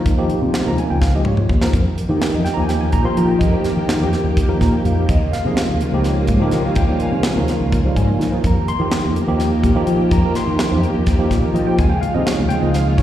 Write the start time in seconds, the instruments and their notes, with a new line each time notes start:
Already playing: tine electric piano F3 A#3 D#4 A#4
0.05 fretless electric bass D#2, kick, closed hi-hat
0.18 tine electric piano F3 A#3 D#4 G4
0.30 muted fretless electric bass stroke, closed hi-hat
0.42 fretless electric bass C3
0.54 snare, closed hi-hat
0.64 fretless electric bass D#2, tine electric piano F3 A#3 D#4 A#4 A#5
0.78 tine electric piano G#5, closed hi-hat
0.90 fretless electric bass C#2, tine electric piano G5
1.01 tine electric piano F5, kick, snare
1.14 tine electric piano F3 A#3 D#4 G4 D#5
1.25 fretless electric bass G#2, tine electric piano C#5, mid tom
1.37 tine electric piano F4, mid tom
1.49 fretless electric bass D#2, kick
1.62 tine electric piano F3 A#3 D#4 A#4, snare
1.73 fretless electric bass F2, string machine D#3 A#3, kick, closed hi-hat
1.77 string machine G4
1.98 muted fretless electric bass stroke, closed hi-hat
2.09 fretless electric bass D#3, tine electric piano F3 A#3 D#4 G4
2.22 tine electric piano A#4, snare, closed hi-hat
2.33 fretless electric bass F2, tine electric piano D#5
2.45 tine electric piano G5, snare, closed hi-hat
2.54 fretless electric bass D#2, tine electric piano F3 A#3 D#4 G4 A#5
2.62 tine electric piano G#5
2.69 tine electric piano G5, snare, closed hi-hat
2.81 tine electric piano G#5
2.92 fretless electric bass A#2, tine electric piano A#5, kick, closed hi-hat
3.04 tine electric piano F3 A#3 D#4 A#4 C6
3.17 fretless electric bass F3, tine electric piano A#5, closed hi-hat
3.28 tine electric piano G5
3.39 fretless electric bass F2, tine electric piano D#5, kick, closed hi-hat
3.52 tine electric piano F3 A#3 D#4 G4 A#4
3.64 muted fretless electric bass stroke, snare, closed hi-hat
3.76 fretless electric bass D#3
3.89 snare, closed hi-hat
4.00 fretless electric bass F2, tine electric piano F3 A#3 D#4 G4
4.13 snare, closed hi-hat
4.24 fretless electric bass D#2
4.37 kick, closed hi-hat
4.48 tine electric piano F3 A#3 D#4 A#4
4.61 fretless electric bass A#2, tine electric piano A#5, kick, snare, closed hi-hat
4.84 fretless electric bass F2, tine electric piano F5, closed hi-hat
4.98 tine electric piano F3 A#3 D#4 G4
5.09 fretless electric bass D#2, string machine C#3 A#3 F4, tine electric piano D#5, kick, closed hi-hat
5.33 tine electric piano F5, muted fretless electric bass stroke, snare, closed hi-hat
5.44 fretless electric bass C3, tine electric piano F3 A#3 D#4 G#4
5.57 snare, closed hi-hat
5.68 fretless electric bass D#2
5.81 closed hi-hat
5.92 fretless electric bass C#2, tine electric piano F3 A#3 D#4 G4
6.04 snare, closed hi-hat
6.27 fretless electric bass G#2, kick, closed hi-hat
6.40 tine electric piano F3 A#3 D#4 G4
6.51 fretless electric bass D#3, snare, closed hi-hat
6.75 fretless electric bass D#2, tine electric piano G5, kick, closed hi-hat
6.88 tine electric piano F3 G3 A#3 D#4
7.00 tine electric piano G#5, muted fretless electric bass stroke, closed hi-hat
7.12 fretless electric bass C3
7.23 snare, closed hi-hat
7.35 fretless electric bass D#2, tine electric piano F3 A#3 D#4 A#4
7.48 snare, closed hi-hat
7.60 fretless electric bass C#2
7.72 kick, closed hi-hat
7.85 tine electric piano F3 G3 A#3 D#4
7.96 fretless electric bass G#2, tine electric piano G#5, kick, closed hi-hat
8.19 fretless electric bass D#3, snare, closed hi-hat
8.32 tine electric piano F3 A#3 D#4 A#4
8.44 fretless electric bass F2, string machine D#3 A#3 G4, tine electric piano A#5, kick, closed hi-hat
8.68 tine electric piano C6, muted fretless electric bass stroke, closed hi-hat
8.79 fretless electric bass D#3, tine electric piano F3 A#3 D#4 G4
8.92 snare, closed hi-hat
9.04 fretless electric bass F2
9.16 closed hi-hat
9.27 fretless electric bass D#2, tine electric piano F3 A#3 D#4 G4
9.40 snare, closed hi-hat
9.64 fretless electric bass A#2, kick, closed hi-hat
9.75 tine electric piano F3 A#3 D#4 G4
9.87 fretless electric bass F3, closed hi-hat
10.11 fretless electric bass F2, tine electric piano A#5, kick, closed hi-hat
10.24 tine electric piano F3 A#3 D#4 A#4
10.35 tine electric piano C6, muted fretless electric bass stroke, snare, closed hi-hat
10.47 fretless electric bass D#3
10.59 snare, closed hi-hat
10.71 fretless electric bass F2, tine electric piano F3 A#3 D#4 G4
10.83 closed hi-hat
10.94 fretless electric bass D#2
11.06 kick, snare, closed hi-hat
11.19 tine electric piano F3 A#3 D#4 G4
11.31 fretless electric bass A#2, kick, snare, closed hi-hat
11.45 tine electric piano A#4
11.53 fretless electric bass F3, tine electric piano D#5, closed hi-hat
11.67 tine electric piano F3 A#3 D#4 G4 G5
11.78 fretless electric bass D#2, string machine C#3 G#3 F4, tine electric piano G#5, kick, closed hi-hat
11.90 tine electric piano G5
12.01 tine electric piano F5, muted fretless electric bass stroke, closed hi-hat
12.14 fretless electric bass C3, tine electric piano F3 A#3 D#4 G#4 D#5
12.26 tine electric piano C#5, snare, closed hi-hat
12.38 fretless electric bass D#2, tine electric piano F5
12.49 tine electric piano G5, closed hi-hat
12.62 fretless electric bass C#2, tine electric piano F3 A#3 D#4 G#4 D#5
12.74 tine electric piano F5, snare, closed hi-hat
12.87 tine electric piano G#4
12.97 fretless electric bass G#2, tine electric piano C#5, kick, closed hi-hat